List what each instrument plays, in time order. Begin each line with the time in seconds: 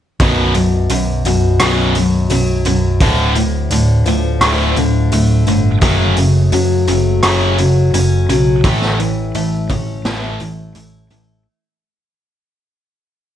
0.20 picked electric bass B0, distorted electric guitar B1 F#2 B2, steel-string acoustic guitar B2, kick, open hi-hat
0.54 picked electric bass B0, distorted electric guitar B1 F#2, steel-string acoustic guitar F#2, open hi-hat
0.89 picked electric bass B1, distorted electric guitar B1 F#2, steel-string acoustic guitar F#2, open hi-hat
1.25 picked electric bass B0, distorted electric guitar B1 F#2, steel-string acoustic guitar B2, open hi-hat
1.60 picked electric bass B0, distorted electric guitar B1 F#2 B2, steel-string acoustic guitar F#3, cross-stick, open hi-hat
1.95 distorted electric guitar B1 F#2, steel-string acoustic guitar F#2, open hi-hat
2.30 picked electric bass B0, distorted electric guitar B1 F#2, steel-string acoustic guitar F#3, open hi-hat
2.65 picked electric bass B0, distorted electric guitar B1 F#2, steel-string acoustic guitar F#2, open hi-hat
3.00 picked electric bass D1, steel-string acoustic guitar D2, distorted electric guitar D2 A2 D3, kick, open hi-hat
3.35 distorted electric guitar D2 A2, steel-string acoustic guitar A2, open hi-hat
3.70 picked electric bass D1, distorted electric guitar D2 A2, steel-string acoustic guitar D3, open hi-hat
4.04 picked electric bass D1, distorted electric guitar D2 A2, steel-string acoustic guitar F3, open hi-hat
4.41 picked electric bass D1, distorted electric guitar D2 A2 D3, steel-string acoustic guitar A3, cross-stick, open hi-hat
4.76 picked electric bass D1, distorted electric guitar D2 A2, steel-string acoustic guitar D3, open hi-hat
5.11 picked electric bass D1, distorted electric guitar D2 A2, steel-string acoustic guitar A3, open hi-hat
5.46 picked electric bass G1, distorted electric guitar D2 A2, steel-string acoustic guitar D3, open hi-hat
5.81 picked electric bass F#1, steel-string acoustic guitar F#2, distorted electric guitar F#2 C#3 F#3, kick, open hi-hat
6.17 picked electric bass F#1, distorted electric guitar F#2 C#3, steel-string acoustic guitar C#3, open hi-hat
6.52 picked electric bass F#2, distorted electric guitar F#2 C#3, steel-string acoustic guitar F#3, open hi-hat
6.87 picked electric bass F#1, distorted electric guitar F#2 C#3, steel-string acoustic guitar A3, open hi-hat
7.23 picked electric bass F#1, distorted electric guitar F#2 C#3 F#3, steel-string acoustic guitar C#4, cross-stick, open hi-hat
7.58 distorted electric guitar F#2 C#3, steel-string acoustic guitar F#3, open hi-hat
7.94 picked electric bass F#1, distorted electric guitar F#2 C#3, steel-string acoustic guitar C#4, open hi-hat
8.29 picked electric bass B1, distorted electric guitar F#2 C#3, steel-string acoustic guitar F#3, open hi-hat
8.64 picked electric bass A1, distorted electric guitar A2 E3 A3, steel-string acoustic guitar A2, kick, open hi-hat
8.82 snare
8.99 distorted electric guitar A2 E3, steel-string acoustic guitar E3, open hi-hat
9.35 picked electric bass A1, distorted electric guitar A2 E3, steel-string acoustic guitar A3, open hi-hat
9.69 picked electric bass A1, distorted electric guitar A2 E3, steel-string acoustic guitar C#4, kick, open hi-hat
10.05 picked electric bass A1, distorted electric guitar A2 E3 A3, steel-string acoustic guitar E4, snare, open hi-hat
10.40 picked electric bass A1, distorted electric guitar A2 E3, steel-string acoustic guitar A3, open hi-hat
10.75 picked electric bass A1, distorted electric guitar A2 E3, steel-string acoustic guitar E4, open hi-hat
11.10 picked electric bass A1, distorted electric guitar A2 E3, steel-string acoustic guitar A3, open hi-hat